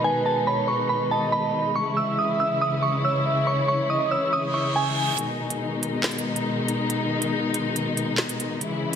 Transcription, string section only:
0.00 1.72 B2 medium
0.00 1.72 D#3 medium
0.00 5.14 G#3 medium
0.00 1.72 D#4 medium
1.76 5.15 C#3 medium
1.76 5.15 E3 medium
1.76 5.15 E4 medium
5.18 8.58 B2 medium
5.18 8.58 D#3 medium
5.18 8.58 G#3 medium
5.18 8.58 D#4 medium
8.61 8.96 C#3 medium
8.61 8.96 E3 medium
8.61 8.96 G#3 medium
8.61 8.96 E4 medium

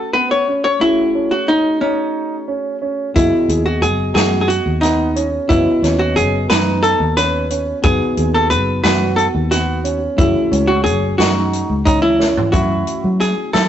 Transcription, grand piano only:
0.15 0.41 B3 medium
0.48 1.01 C#4 medium
1.15 1.67 C#4 medium
1.81 2.34 D#4 medium
2.48 2.74 C#4 medium
2.82 3.08 C#4 medium
3.49 4.01 G#4 medium
4.16 4.68 F#4 medium
4.82 5.09 B3 medium
5.16 5.68 C#4 medium
5.83 6.36 C#4 medium
6.50 7.02 D#4 medium
7.17 7.43 C#4 medium
7.51 7.77 C#4 medium
8.17 8.70 G#4 medium
8.84 9.37 F#4 medium
9.51 9.78 B3 medium
9.84 10.37 C#4 medium
10.51 11.04 C#4 medium
11.19 11.72 D#4 medium
11.86 12.12 C#4 medium
12.19 12.46 C#4 medium
12.53 13.05 E4 medium
13.53 13.69 E4 medium

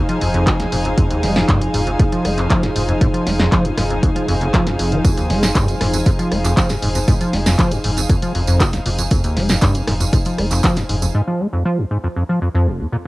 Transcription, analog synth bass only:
0.21 0.43 F1 medium
0.72 0.94 F1 medium
1.23 1.45 F1 loud
1.74 1.95 F1 loud
2.25 2.46 F1 medium
2.76 2.97 F1 medium
3.27 3.48 F1 loud
3.77 3.99 F1 loud
4.28 4.50 F1 loud
4.79 5.00 F1 medium
5.30 5.51 F1 loud
5.81 6.02 F1 loud
6.32 6.53 F1 loud
6.82 7.04 F1 medium
7.33 7.55 F1 loud
7.84 8.06 F1 loud
8.35 8.56 F1 medium
8.86 9.07 F1 medium
9.37 9.58 F1 loud
9.88 10.09 F1 medium
10.38 10.60 F1 medium
10.89 11.11 F1 medium

